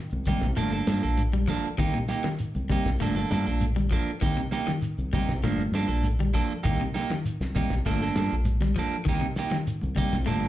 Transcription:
0.10 fingered electric bass C2, high conga, shekere
0.25 fingered electric bass C3, clean electric guitar G3 A#3 D#4 G4, kick, closed hi-hat, high conga, low conga, shekere
0.41 fingered electric bass C2, kick, snare, closed hi-hat, shekere
0.56 fingered electric bass G1, clean electric guitar F3 A3 A#3 D4 A4, closed hi-hat, shekere
0.72 clean electric guitar A#3 D4 A4, closed hi-hat, shekere
0.87 fingered electric bass G2, clean electric guitar F3 A#3 D4 A4, snare, closed hi-hat, high conga, shekere
1.02 fingered electric bass A#1, clean electric guitar A#3 D4 A4, closed hi-hat, shekere
1.17 closed hi-hat, high conga, shekere
1.33 clean electric guitar G3, high conga, shekere
1.47 clean electric guitar F3 A#3 D4 A4, kick, closed hi-hat, high conga, shekere
1.64 muted fingered electric bass stroke, shekere
1.78 fingered electric bass C2, clean electric guitar D#3 A#3 D#4 G4, kick, closed hi-hat, low conga, shekere
1.94 clean electric guitar A#2, shekere
2.08 clean electric guitar A#3 D#4 G4, snare, closed hi-hat, shekere
2.24 clean electric guitar D#3, snare, closed hi-hat, high conga, shekere
2.39 closed hi-hat, shekere
2.55 fingered electric bass C2, closed hi-hat, high conga, shekere
2.70 fingered electric bass C3, clean electric guitar G3 A#3 D#4 G4, kick, closed hi-hat, high conga, low conga, shekere
2.86 fingered electric bass C2, kick, snare, closed hi-hat, shekere
3.00 fingered electric bass G1, clean electric guitar F3 A3 A#3 D4 A4, closed hi-hat, shekere
3.16 clean electric guitar A#3 D4 A4, snare, shekere
3.30 fingered electric bass G2, clean electric guitar F3 A#3 D4 A4, snare, closed hi-hat, high conga, shekere
3.46 fingered electric bass A#1, clean electric guitar A#3 D4 A4, shekere
3.61 closed hi-hat, high conga, shekere
3.76 clean electric guitar G3, closed hi-hat, high conga, low conga, shekere
3.91 clean electric guitar F3 A#3 D4 A4, kick, closed hi-hat, shekere
4.07 muted fingered electric bass stroke, closed hi-hat, shekere
4.21 fingered electric bass C2, clean electric guitar D#3 A#3 D#4 G4, kick, closed hi-hat, low conga, shekere
4.37 clean electric guitar C3, shekere
4.51 clean electric guitar A#3 D#4 G4, snare, closed hi-hat, shekere
4.67 clean electric guitar D#3, snare, high conga, shekere
4.82 closed hi-hat, shekere
4.98 fingered electric bass C2, shekere
5.13 fingered electric bass C3, clean electric guitar G3 A#3 D#4 G4, kick, closed hi-hat, high conga, low conga, shekere
5.29 fingered electric bass C2, kick, snare, closed hi-hat, shekere
5.42 fingered electric bass G1, clean electric guitar F3 A3 A#3 D4, muted clean electric guitar stroke, closed hi-hat, shekere
5.58 closed hi-hat, high conga, shekere
5.72 fingered electric bass G2, clean electric guitar F3 A#3 D4 A4, snare, closed hi-hat, high conga, shekere
5.88 fingered electric bass A#1, clean electric guitar A#3 D4 A4, closed hi-hat, shekere
6.03 closed hi-hat, high conga, shekere
6.19 clean electric guitar G3, low conga, shekere
6.34 clean electric guitar F3 A#3 D4 A4, kick, closed hi-hat, high conga, shekere
6.49 muted fingered electric bass stroke, shekere
6.63 fingered electric bass C2, clean electric guitar D#3 A#3 D#4 G4, kick, closed hi-hat, low conga, shekere
6.81 clean electric guitar C3, shekere
6.94 clean electric guitar A#3 D#4 G4, snare, closed hi-hat, shekere
7.10 clean electric guitar D#3, snare, closed hi-hat, high conga, shekere
7.25 closed hi-hat, shekere
7.40 fingered electric bass C2, snare, closed hi-hat, shekere
7.55 fingered electric bass C3, clean electric guitar G3 A#3 D#4 G4, kick, snare, open hi-hat, high conga, low conga, shekere
7.70 fingered electric bass C2, kick, snare, closed hi-hat, shekere
7.86 fingered electric bass G1, clean electric guitar F3 A3 A#3 D4 A4, kick, closed hi-hat, shekere
8.01 clean electric guitar A#3 D4 A4, snare, shekere
8.15 fingered electric bass G2, clean electric guitar F3 A#3 D4 A4, snare, closed hi-hat, high conga, shekere
8.31 fingered electric bass A#1, shekere
8.45 closed hi-hat, high conga, shekere
8.61 clean electric guitar G3, snare, closed hi-hat, high conga, low conga, shekere
8.76 clean electric guitar F3 A#3 D4 A4, kick, closed hi-hat, shekere
8.91 muted fingered electric bass stroke, closed hi-hat, shekere
9.05 fingered electric bass C2, clean electric guitar D#3 A#3 D#4 G4, kick, closed hi-hat, low conga, shekere
9.21 clean electric guitar C3, shekere
9.36 clean electric guitar A#3 D#4 G4, snare, closed hi-hat, shekere
9.51 clean electric guitar D#3, snare, high conga, shekere
9.67 closed hi-hat, shekere
9.81 fingered electric bass C2, high conga, shekere
9.95 fingered electric bass C3, clean electric guitar G3 A#3 D#4 G4, kick, closed hi-hat, high conga, low conga, shekere
10.13 fingered electric bass C2, kick, snare, closed hi-hat, shekere
10.26 fingered electric bass G1, clean electric guitar F3 A3 A#3 D4 A4, closed hi-hat, shekere
10.42 closed hi-hat, high conga, shekere

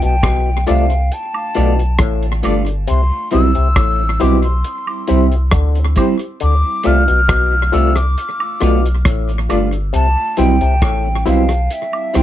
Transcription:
0.02 sub bass B1, clav B2, flute G5, closed hi-hat
0.23 sub bass B1, clav B2, kick, cross-stick, closed hi-hat, high woodblock
0.46 muted clean electric guitar stroke
0.67 sub bass C2, clav C3, clean electric guitar A3 D4 F4, reed electric piano F4 A4 D5, flute F5, closed hi-hat, tambourine
0.90 closed hi-hat
1.12 flute A5, closed hi-hat
1.34 high woodblock
1.55 sub bass B1, clav B2, clean electric guitar A3 D4 F4, reed electric piano F4 A4 D5, closed hi-hat, tambourine
1.79 closed hi-hat
1.99 sub bass A1, clav A2, kick, cross-stick, closed hi-hat
2.23 closed hi-hat
2.43 sub bass G1, clav G2, clean electric guitar A3 D4 F4, reed electric piano F4 A4 D5, closed hi-hat, tambourine, high woodblock
2.66 reed electric piano A4 D5, closed hi-hat
2.87 sub bass C2, clav C3, flute C6, closed hi-hat
3.31 sub bass B1, clav B2, clean electric guitar G3 C4 E4, reed electric piano E4 G4 C5, flute E6, closed hi-hat, tambourine
3.55 sub bass C2, clav C3, closed hi-hat
3.76 sub bass A1, clav A2, kick, cross-stick, closed hi-hat, high woodblock
3.99 muted clean electric guitar stroke
4.20 sub bass B1, clav B2, clean electric guitar G3 C4 E4, reed electric piano E4 G4 C5, flute D6, closed hi-hat, tambourine
4.43 reed electric piano G4, flute C6, closed hi-hat
4.64 closed hi-hat
4.87 high woodblock
5.07 sub bass C2, clav C3, clean electric guitar G3 C4 E4, reed electric piano E4 G4 C5, closed hi-hat, tambourine
5.32 closed hi-hat
5.51 sub bass D2, clav D3, kick, cross-stick, closed hi-hat
5.75 closed hi-hat
5.96 clean electric guitar G3 C4 E4, reed electric piano E4 G4 C5, kick, closed hi-hat, tambourine, high woodblock
6.19 reed electric piano G4 C5, closed hi-hat
6.40 sub bass D2, clav D3, flute D6, closed hi-hat
6.83 sub bass C2, clav C3, clean electric guitar A3 D4 F4, reed electric piano F4 A4 D5, flute F6, closed hi-hat, tambourine
7.07 sub bass B1, clav B2, closed hi-hat
7.28 sub bass B1, clav B2, kick, cross-stick, closed hi-hat, high woodblock
7.52 muted clean electric guitar stroke
7.72 sub bass C2, clav C3, clean electric guitar A3 D4 F4, reed electric piano F4 A4 D5, flute E6, closed hi-hat, tambourine
7.96 flute D6, cross-stick, closed hi-hat
8.18 closed hi-hat
8.40 high woodblock
8.61 sub bass B1, clav B2, clean electric guitar A3 D4 F4, reed electric piano F4 A4 D5, cross-stick, closed hi-hat, tambourine
8.86 closed hi-hat
9.05 sub bass A1, clav A2, kick, cross-stick, closed hi-hat
9.29 closed hi-hat
9.49 sub bass G1, clav G2, clean electric guitar A3 D4 F4, reed electric piano F4 A4 D5, closed hi-hat, tambourine, high woodblock
9.72 reed electric piano A4 D5, closed hi-hat
9.93 sub bass C2, clav C3, flute A5, closed hi-hat
10.37 sub bass B1, clav B2, clean electric guitar G3 C4 E4, reed electric piano E4 G4 C5, flute G5, closed hi-hat, tambourine
10.61 sub bass C2, clav C3, closed hi-hat
10.82 sub bass A1, clav A2, kick, cross-stick, closed hi-hat, high woodblock
11.05 muted clean electric guitar stroke
11.26 sub bass B1, clav B2, clean electric guitar G3 C4 E4, reed electric piano E4 G4 C5, flute F5, closed hi-hat, tambourine
11.49 reed electric piano G4 C5, cross-stick, closed hi-hat
11.70 flute E5, closed hi-hat
11.93 high woodblock
12.14 sub bass C2, clav C3, clean electric guitar G3 C4 E4, reed electric piano E4 G4 C5, flute G5, cross-stick, closed hi-hat, tambourine

